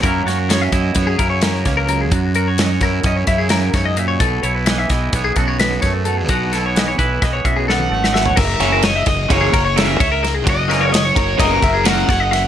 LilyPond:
<<
  \new Staff \with { instrumentName = "Overdriven electric guitar" } { \time 9/8 \key fis \mixolydian \tempo 4. = 86 r1 r8 | r1 r8 | r1 r8 | r2. fis''4. |
e''4 dis''4 cis''4 e''4 r8 | dis''4 cis''4 ais'4 fis''4. | }
  \new Staff \with { instrumentName = "Clean electric guitar" } { \time 9/8 \key fis \mixolydian ais'8 cis''16 ais'16 cis''16 e''16 dis''8 cis''16 gis'16 ais'16 cis''16 ais'8 cis''16 ais'16 ais'16 gis'16 | fis'8 ais'16 cis''16 dis''16 cis''16 ais'8 dis''16 cis''16 e''16 gis'16 ais'8 cis''16 dis''16 e''16 cis''16 | a'8 cis''16 b'16 dis''16 e''16 dis''8 cis''16 gis'16 a'16 cis''16 b'8 cis''16 a'16 a'16 gis'16 | fis'8 a'16 cis''16 dis''16 cis''16 b'8 dis''16 cis''16 e''16 gis'16 a'8 cis''16 dis''16 e''16 cis''16 |
ais'8 cis''16 ais'16 cis''16 e''16 dis''8 cis''16 gis'16 ais'16 cis''16 ais'8 cis''16 ais'16 ais'16 gis'16 | fis'8 ais'16 cis''16 dis''16 cis''16 ais'8 dis''16 cis''16 e''16 gis'16 ais'8 cis''16 dis''16 e''16 cis''16 | }
  \new Staff \with { instrumentName = "Clean electric guitar" } { \time 9/8 \key fis \mixolydian << { <fis ais cis' e'>8 fis'8 b16 cis'16 e'8 b16 cis'16 e'8 cis'8 ais4 | r8 fis'8 cis'8 e'8 cis'8 e'2~ | e'8 e'8 b8 e'8 b8 fis'8 b8 a4 | r8 e'8 b8 e'8 b8 fis'8 b8 a4 |
r1 r8 | r1 r8 | } \\ { fis,4 fis4. cis4. fis,8 | fis,4 fis4. cis8 fis,8 gis,8 ais,8 | b,4 e4. fis,4. b,8 | b,4 e4. fis,4. b,8 |
r1 r8 | r1 r8 | } >> }
  \new Staff \with { instrumentName = "Overdriven electric guitar" } { \clef bass \time 9/8 \key fis \mixolydian r1 r8 | r1 r8 | r1 r8 | r1 r8 |
r8 <cis e ais cis'>8 r4 <cis e ais cis'>8 r8 <cis e ais cis'>8 r4 | r8 <cis e ais cis'>8 r4 <cis e ais cis'>8 r8 <cis e ais cis'>8 r4 | }
  \new Staff \with { instrumentName = "Fingered electric bass" } { \clef bass \time 9/8 \key fis \mixolydian fis,8 fis,4 fis,8 fis,8 fis,4 cis,4 | fis,4. fis,8 fis,8 fis,4 fis,4 | b,,8 b,,4 b,,8 b,,8 b,,4 fis,4 | b,,4. b,,8 b,,8 b,,4 gis,,4 |
fis,,8 fis,,4 fis,,8 fis,,8 fis,,4 cis,4 | fis,,4. fis,,8 fis,,8 fis,,4 fis,,4 | }
  \new DrumStaff \with { instrumentName = "Drums" } \drummode { \time 9/8 <hh bd>8 <hh sn>8 <hh sn>8 <hh bd>8 <hh bd>8 <hh bd>8 <hh sn>8 <hh bd sn>8 hh8 | <hh bd>8 hh8 <hh sn>8 <hh bd sn>8 <hh bd>8 <hh bd>8 <hh sn>8 <hh bd sn>8 hh8 | <hh bd>8 hh8 <hh sn>8 <hh bd sn>8 <hh bd>8 <hh bd>8 <hh sn>8 <hh bd sn>8 hh8 | <hh bd>8 <hh sn>8 <hh sn>8 <hh bd>8 <hh bd sn>8 <hh bd>8 sn16 tommh8 sn16 sn16 tomfh16 |
<cymc bd>8 <cymr sn>8 <cymr sn>8 <bd cymr sn>8 <bd cymr>8 <bd cymr>8 <cymr sn>8 <bd cymr>8 <cymr sn>8 | <bd cymr>8 <cymr sn>8 <cymr sn>8 <bd cymr>8 <bd cymr sn>8 <bd cymr>8 <cymr sn>8 <bd cymr sn>8 <cymr sn>8 | }
>>